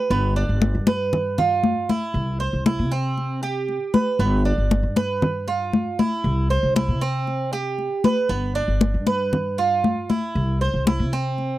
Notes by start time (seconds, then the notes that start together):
0.10 G1 B3, high conga
0.36 D4, high conga
0.49 G1
0.62 high conga
0.75 G2
0.87 B4, high conga
1.13 high conga, low conga
1.38 F4, high conga, low conga
1.64 high conga
1.89 E4, high conga
2.14 C2, high conga
2.40 C5, high conga
2.53 C2
2.66 E4, high conga
2.79 C3
2.91 C4, high conga
3.18 high conga
3.43 G4, high conga
3.69 high conga
3.94 B4, high conga
4.19 G1 B3, high conga
4.45 D4, high conga
4.58 G1
4.71 high conga
4.83 G2
4.96 B4, high conga
5.22 high conga, low conga
5.48 F4, high conga
5.73 high conga
5.99 E4, high conga
6.24 C2, high conga
6.50 C5, high conga
6.63 C2
6.76 E4, high conga
6.88 C3
7.01 C4, high conga
7.27 high conga
7.53 G4, high conga
7.78 high conga
8.04 B4, high conga
8.29 G1 B3, high conga
8.55 D4, high conga
8.68 G1
8.81 high conga
8.94 G2
9.07 B4, high conga
9.33 high conga, low conga
9.58 F4, high conga
9.84 high conga
10.10 E4, high conga
10.35 C2, high conga
10.61 C5, high conga
10.74 C2
10.87 E4, high conga
10.99 C3
11.13 C4, high conga
11.38 high conga